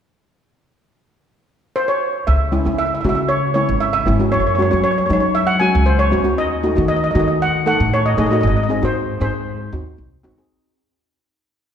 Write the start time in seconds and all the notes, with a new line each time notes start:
1.76 C5
1.88 C#5
2.27 C#2 E5
2.52 G#3 C#4 E4
2.65 C#3 G#3 C#4 E4
2.78 E5
2.86 E5
2.95 E5
3.01 C#3 G#3 E5
3.05 C#4 F#4
3.09 E5
3.15 E5
3.29 C#5
3.54 G#3 C#4 E4 C#5
3.69 G#1
3.80 E5
3.93 E5
4.06 G#1 G#3 C#4 E4
4.19 G#3 C#4 F#4
4.32 F#2 C#5
4.40 C#5
4.47 C#5
4.55 G#3 C#4 C#5
4.59 F#4 C#5
4.71 F#3 G#3 C#4 F#4 C#5
4.84 C#5
4.91 C#5
4.98 C#5
5.06 G#3 C#4 C#5
5.10 F#3 D#4 C#5
5.20 C#5
5.35 E5
5.47 F#5
5.60 G#3 C#4 F#4 G#5
5.75 C#2
5.86 C5
5.99 C#5
6.11 E2 G#3 C#4 F#4
6.24 G#3 C#4 F#4
6.38 D#2 D#5
6.63 A3 D#4 F#4
6.75 D#3 A3 D#4 F#4
6.88 D#5
6.96 D#5
7.04 D#5
7.11 A3 D#4 D#5
7.15 D#3 F#4
7.19 D#5
7.28 D#5
7.42 F#5
7.66 A3 D#4 A4 F#5
7.80 A2
7.94 C#5
8.06 D#5
8.17 A2 A3 D#4 G#4 D#5
8.26 A3 D#5
8.31 D#4 F#4 D#5
8.41 G#1 D#5
8.47 D#5
8.56 D#5
8.63 D#5
8.69 C4 D#4 G#4 D#5
8.82 G#2 C4 D#4 F#4 C5
9.20 G#2 C4 D#4 G#4 C5
9.73 D#2 C4 D#4 F#4
9.98 C2
10.23 G#1 C4 D#4 F#4
10.38 C4 D#4 G#4